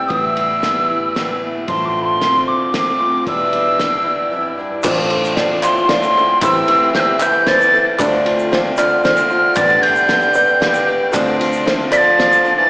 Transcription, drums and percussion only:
0.10 kick, ride
0.37 ride
0.63 snare, ride
1.16 snare, ride
1.68 kick, ride
2.22 snare, ride
2.74 snare, ride
3.27 kick, ride
3.53 ride
3.79 snare, ride
4.83 kick, clap, crash, shaker
5.10 ride
5.24 shaker
5.37 snare, ride
5.63 clap, shaker
5.89 snare, ride, shaker
6.03 clap, shaker
6.17 shaker
6.41 kick, clap, ride, shaker
6.68 ride
6.95 snare, ride
7.20 clap, shaker
7.47 snare, ride, shaker
7.60 clap, shaker
7.75 shaker
7.99 kick, clap, ride, shaker
8.26 ride
8.39 shaker
8.53 snare, ride
8.77 clap, shaker
9.04 snare, ride, shaker
9.17 clap, shaker
9.30 shaker
9.55 kick, clap, ride, shaker
9.69 clap, shaker
9.83 ride
9.95 shaker
10.08 snare, ride, shaker
10.21 clap, shaker
10.34 shaker
10.48 shaker
10.62 snare, ride
10.74 clap, shaker
11.13 kick, clap, ride, shaker
11.41 ride
11.53 shaker
11.67 snare, ride
11.92 clap, shaker
12.20 snare, ride, shaker
12.32 clap, shaker
12.45 shaker

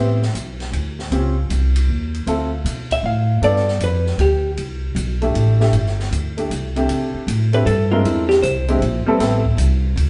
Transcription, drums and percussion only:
0.22 snare
0.35 hi-hat pedal, ride
0.60 snare, ride
0.73 ride
0.99 snare
1.12 ride
1.50 hi-hat pedal, ride
1.76 ride
2.15 ride
2.27 ride
2.66 hi-hat pedal, ride
2.91 kick, ride
3.43 ride
3.56 snare
3.68 snare
3.80 hi-hat pedal, ride
4.06 snare
4.19 ride
4.57 ride
4.96 hi-hat pedal, ride
5.22 ride
5.35 ride
5.60 snare
5.73 ride
5.86 snare
6.00 snare
6.12 hi-hat pedal, ride
6.38 ride
6.51 hi-hat pedal, ride
6.76 ride
6.89 ride
7.28 hi-hat pedal, ride
7.53 ride
7.67 ride
8.05 ride
8.30 snare
8.43 hi-hat pedal, ride
8.68 ride
8.82 ride
9.20 snare, ride
9.45 kick
9.58 hi-hat pedal, ride
9.97 ride

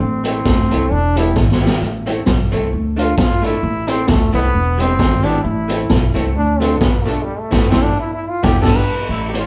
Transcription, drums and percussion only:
0.25 closed hi-hat
0.45 kick, snare
0.71 closed hi-hat
1.17 closed hi-hat
1.36 kick, snare
1.51 snare
1.67 snare
1.82 hi-hat pedal
2.07 closed hi-hat
2.26 kick, snare
2.52 closed hi-hat
2.99 closed hi-hat
3.18 kick, snare
3.44 closed hi-hat
3.88 closed hi-hat
4.08 kick, snare
4.34 closed hi-hat
4.80 closed hi-hat
4.99 kick, snare
5.26 closed hi-hat
5.69 closed hi-hat
5.90 kick, snare
6.16 closed hi-hat
6.62 closed hi-hat
6.81 kick, snare
7.08 closed hi-hat
7.52 kick, snare, crash
7.72 kick, snare
8.44 kick, snare
8.64 kick, snare, crash
9.35 closed hi-hat

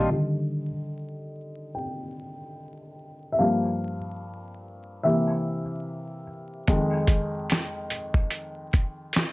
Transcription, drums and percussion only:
6.68 kick, closed hi-hat
7.07 kick, closed hi-hat
7.50 snare, closed hi-hat
7.90 closed hi-hat
8.14 kick
8.30 closed hi-hat
8.73 kick, closed hi-hat
9.13 snare, closed hi-hat

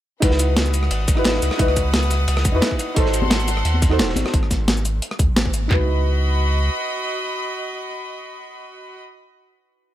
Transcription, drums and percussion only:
0.22 kick, closed hi-hat, ride
0.31 snare
0.39 closed hi-hat, ride, shaker
0.56 snare, closed hi-hat, ride
0.66 shaker
0.74 closed hi-hat, ride, shaker
0.83 cross-stick
0.91 closed hi-hat, ride
1.08 kick, closed hi-hat, ride, shaker
1.17 cross-stick
1.24 snare, closed hi-hat, ride
1.34 snare
1.42 snare, closed hi-hat, ride, shaker
1.51 cross-stick, snare
1.59 kick, closed hi-hat, ride
1.68 cross-stick
1.76 kick, closed hi-hat, ride, shaker
1.93 snare, closed hi-hat, ride
2.03 shaker
2.10 snare, closed hi-hat, ride, shaker
2.28 closed hi-hat, ride
2.37 cross-stick, snare
2.45 kick, closed hi-hat, ride, shaker
2.62 snare, closed hi-hat, ride
2.71 kick
2.79 closed hi-hat, ride, shaker
2.96 kick, closed hi-hat, ride
3.06 snare
3.14 closed hi-hat, ride, shaker
3.22 high conga
3.30 snare, closed hi-hat, ride
3.40 shaker
3.48 closed hi-hat, ride, high bongo, shaker
3.57 cross-stick
3.65 closed hi-hat, ride
3.74 high conga
3.82 kick, closed hi-hat, ride, shaker
3.91 cross-stick
3.99 snare, closed hi-hat, ride, high bongo
4.09 snare
4.16 snare, closed hi-hat, ride, high conga, shaker
4.26 cross-stick, snare, high bongo
4.34 kick, closed hi-hat
4.43 cross-stick
4.51 kick, snare, closed hi-hat, shaker
4.68 snare, closed hi-hat
4.77 shaker
4.85 closed hi-hat, shaker
5.02 closed hi-hat
5.11 cross-stick
5.19 kick, closed hi-hat, shaker
5.36 snare, closed hi-hat
5.45 kick
5.54 closed hi-hat, shaker
5.71 kick, clap, floor tom

